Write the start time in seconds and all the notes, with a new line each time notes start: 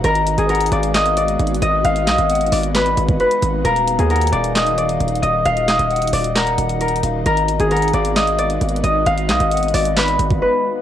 Already playing: F#4 D5
0.04 G#1 G#3 B3 D#4 A#4 D#5, closed hi-hat
0.15 closed hi-hat
0.27 closed hi-hat
0.38 G#1 G#4, closed hi-hat
0.49 A#4 F#5, closed hi-hat
0.55 closed hi-hat
0.60 closed hi-hat
0.66 closed hi-hat
0.71 G#1 D5 F5, closed hi-hat
0.83 closed hi-hat
0.94 D#5 F5, snare, clap, closed hi-hat
1.06 closed hi-hat
1.17 D5, closed hi-hat
1.28 closed hi-hat
1.39 G#1, closed hi-hat
1.47 closed hi-hat
1.54 closed hi-hat
1.62 G#1 D#5, closed hi-hat
1.84 G#1 D#5 F5, closed hi-hat
1.96 closed hi-hat
2.07 B1 D#5, snare, clap, closed hi-hat
2.18 G#1, closed hi-hat
2.30 F#5, closed hi-hat
2.35 closed hi-hat
2.41 closed hi-hat
2.46 closed hi-hat
2.52 G#1 D5 D#5, open hi-hat
2.63 closed hi-hat
2.75 B4, snare, clap, closed hi-hat
2.86 closed hi-hat
2.97 G#1, closed hi-hat
3.09 kick, closed hi-hat
3.20 B4, closed hi-hat
3.31 closed hi-hat
3.42 G#1, closed hi-hat
3.65 D#1 D#3 A#4 F5, closed hi-hat
3.76 closed hi-hat
3.87 closed hi-hat
3.99 D#2 G#4, closed hi-hat
4.10 A#4 F#5, closed hi-hat
4.16 closed hi-hat
4.21 closed hi-hat
4.27 closed hi-hat
4.32 D#1 D5 F5, closed hi-hat
4.44 closed hi-hat
4.55 D#5 F5, snare, clap, closed hi-hat
4.66 closed hi-hat
4.78 D5, closed hi-hat
4.89 closed hi-hat
5.00 D#1, closed hi-hat
5.08 closed hi-hat
5.15 closed hi-hat
5.22 D#1 D#5, closed hi-hat
5.45 D#1 D#5 F5, closed hi-hat
5.57 closed hi-hat
5.68 D#5, snare, clap, closed hi-hat
5.79 D#1, closed hi-hat
5.90 F#5, closed hi-hat
5.96 closed hi-hat
6.02 closed hi-hat
6.07 closed hi-hat
6.13 D#1 D5 D#5, open hi-hat
6.24 closed hi-hat
6.35 A#4 F#5, snare, clap, closed hi-hat
6.47 closed hi-hat
6.58 D#1, closed hi-hat
6.70 closed hi-hat
6.81 A#4, closed hi-hat
6.88 closed hi-hat
6.96 closed hi-hat
7.03 D#1 F5, closed hi-hat
7.26 G#1 G#3 B3 F#4 A#4 D#5, closed hi-hat
7.37 closed hi-hat
7.48 closed hi-hat
7.60 G#1 G#4, closed hi-hat
7.71 A#4 F#5, closed hi-hat
7.77 closed hi-hat
7.82 closed hi-hat
7.88 closed hi-hat
7.93 G#1 D5 F5, closed hi-hat
8.05 closed hi-hat
8.16 D#5 F5, snare, clap, closed hi-hat
8.27 closed hi-hat
8.39 D5, closed hi-hat
8.50 closed hi-hat
8.61 G#1, closed hi-hat
8.69 closed hi-hat
8.76 closed hi-hat
8.84 G#1 D#5, closed hi-hat
9.06 G#1 D#5 F5, closed hi-hat
9.18 closed hi-hat
9.29 B1 D#5, snare, clap, closed hi-hat
9.40 G#1, closed hi-hat
9.51 F#5, closed hi-hat
9.57 closed hi-hat
9.63 closed hi-hat
9.68 closed hi-hat
9.74 G#1 D5 D#5, open hi-hat
9.85 closed hi-hat
9.97 B4, snare, clap, closed hi-hat
10.08 closed hi-hat
10.19 G#1, closed hi-hat
10.30 kick, closed hi-hat
10.42 B4